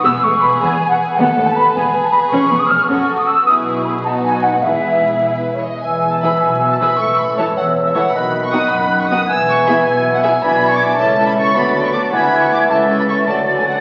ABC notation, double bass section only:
X:1
M:6/8
L:1/8
Q:3/8=105
K:E
V:1 name="Double bass section" clef=bass
E,,, E,,, E,,, E,,, z2 | D,, D,, D,, E,,, z2 | ^E,,, E,,, E,,, F,,, z2 | B,,,3 B,,,3 |
E,,,4- E,,, z | E,,,3 B,,,3 | A,,,3 E,,,3 | B,,,3 F,,,3 |
E,,,3 B,,,3 | [K:A] B,,,3 C,,3 | D,,3 D,,3 | C,,3 D,,3 |]